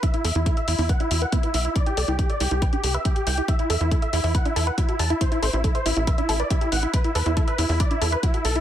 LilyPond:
<<
  \new Staff \with { instrumentName = "Supersaw synth" } { \time 4/4 \key e \minor \tempo 4 = 139 e''16 e'16 e''16 e'16 e'16 e''16 e'16 e'16 fis''16 e'16 e'16 fis''16 e'16 e'16 e''16 e'16 | d''16 g'16 d''16 g'16 g'16 d''16 g'16 g'16 g''16 g'16 g'16 e''16 g'16 g'16 g''16 g'16 | e''16 e'16 e''16 e'16 e'16 e''16 e'16 e'16 fis''16 e'16 e'16 fis''16 e'16 e'16 a''16 e'16 | c''16 e'16 c''16 e'16 e'16 c''16 e'16 e'16 e''16 e'16 e'16 d''16 e'16 e'16 fis''16 e'16 |
b'16 e'16 b'16 e'16 e'16 b'16 e'16 e'16 d''16 e'16 e'16 b'16 e'16 e'16 a'16 e'16 | }
  \new Staff \with { instrumentName = "Synth arpeggio sound" } { \time 4/4 \key e \minor e'16 e'16 a'16 e'16 a'16 e''16 e'16 e'16 b'16 d'16 fis'16 b'16 b16 b'16 e'16 e'16 | e'16 e'16 a'16 e'16 a'16 e''16 e'16 e'16 b'16 d'16 a'16 b'16 g'16 g'16 e'16 e'16 | e'16 e'16 a'16 e'16 a'16 e''16 e'16 e'16 b'16 d'16 a'16 b'16 fis'16 fis'16 e'16 e'16 | e'16 e'16 a'16 e'16 a'16 e''16 e'16 e'16 b'16 d'16 a'16 b'16 g'16 g'16 e'16 e'16 |
e'16 e'16 a'16 e'16 a'16 e''16 e'16 e'16 b'16 d'16 a'16 b'16 fis'16 fis'16 e'16 e'16 | }
  \new Staff \with { instrumentName = "Analog synth bass" } { \clef bass \time 4/4 \key e \minor r8 e,16 e,16 r8 e,16 e,16 r8 e,16 r8. b,,16 r16 | r8 c,16 c,16 r8 c,16 c,16 r8 c,16 r8. c,16 r16 | r8 e,16 e,16 r8 e,16 e,16 r8 e,16 r8. e,16 r16 | r8 a,,16 a,,16 r8 a,,16 a,,16 r8 a,,16 r8. a,,16 r16 |
r8 e,16 e,16 r8 e,16 e,16 r8 e,16 r8. b,,16 r16 | }
  \new DrumStaff \with { instrumentName = "Drums" } \drummode { \time 4/4 <hh bd>16 hh16 hho16 hh16 <hh bd>16 hh16 hho16 hho16 <hh bd>16 hh16 hho16 hh16 <hh bd>16 hh16 hho16 hh16 | <hh bd>16 hh16 hho16 hh16 <hh bd>16 hh16 hho16 hh16 <hh bd>16 hh16 hho16 hh16 <hh bd>16 hh16 hho16 hh16 | <hh bd>16 hh16 hho16 hh16 <hh bd>16 hh16 hho16 hho16 <hh bd>16 hh16 hho8 <hh bd>16 hh16 hho16 hh16 | <hh bd>16 hh16 hho16 hh16 <hh bd>16 hh16 hho16 hh16 <hh bd>16 hh16 hho16 hh16 <hh bd>16 hh16 hho16 hh16 |
<hh bd>16 hh16 hho16 hh16 <hh bd>16 hh16 hho16 hho16 <hh bd>16 hh16 hho16 hh16 <hh bd>16 hh16 hho16 hh16 | }
>>